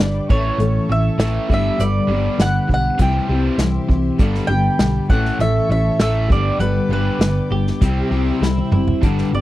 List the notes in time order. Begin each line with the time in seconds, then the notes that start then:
Already playing: B4 D5 G5 D6
0.00 G1 G2 D3 G3 D4 G4 B4, snare, closed hi-hat
0.29 A1 A2 E3 A3 C#4 E4 A4 C#5 E5 C#6, kick
0.33 A3
0.58 A1 A2 E3 A3 C#4 E4 A4, closed hi-hat
0.88 A1 A2 E3 A3 C#4 E4 A4 E5
1.18 A1 A2 E3 A3 C#4 E4, snare, closed hi-hat
1.22 A4
1.47 G1 G2 D3 G3 B3 D4 G4 B4 D5 B5, kick
1.52 G3 E5
1.77 G1 G2 D3 G3 B3 D4 G4 D5, closed hi-hat
2.07 G1 G2 D3 G3 B3 D4 G4
2.12 G3
2.38 G1 G2 D3 G3 B3 D4 F#5, snare, closed hi-hat
2.42 G4
2.67 B1 G2 D3 D4 G4, kick
2.72 G3 B3 F#5
2.96 C2 C3 E3 G3 C5 E5 C6, kick, closed hi-hat
3.00 C4 E4 G4 G5
3.28 C2 C3 E3 G3 E4 G4
3.33 C4
3.58 C2 C3 E3 G3 C4 E4, snare, closed hi-hat
3.62 G4
3.88 C2 C3 E3 C4 E4 G4, kick
4.18 G1 G2 D3 G3 B3 D4 G4 B4 D5 B5, kick, closed hi-hat
4.35 snare
4.47 G1 G2 D3 D4 G4 G5
4.52 G3 B3
4.79 B1 G2 D3 G3 B3 D4 G4, snare, closed hi-hat
5.09 A1 A2 E3 A3 C#4 E4 A4 C#5 E5 F#5 C#6, kick
5.25 snare
5.39 A1 A2 E3 A3 C#4 E4 A4 E5, closed hi-hat
5.69 A1 A2 E3 A3 C#4 E4 A4 E5
5.99 A1 A2 E3 A3 C#4 E4 A4 E5, snare, closed hi-hat
6.28 G1 G2 D3 G3 B3 D4 G4 B4 D5 G5 D6, kick
6.32 D5
6.58 G1 G2 D3 G3 B3 D4 G4 B4, closed hi-hat
6.89 G1 G2 D3 G3 B3 D4 G4 B4
7.19 G1 G2 G3 B3 D4 G4, snare, closed hi-hat
7.23 D3
7.50 G1 G2 D3 G3 B3 D4 G4
7.67 snare
7.80 C2 C3 G3 C4 E4 G4 C5 E5 E6, kick, closed hi-hat
8.10 C2 C3 G3 C4 E4 G4
8.40 C2 C3 G3 C4 E4, snare
8.45 G4
8.58 high tom
8.71 F#1 C3 G3 C4 E4 G4, mid tom
8.88 floor tom
9.01 G1 G2 D3 G3 B3 D4 G4 B4 D5 D6, kick, closed hi-hat
9.18 snare
9.32 G1 G2 D3 B3 D4 G4 D5
9.37 G3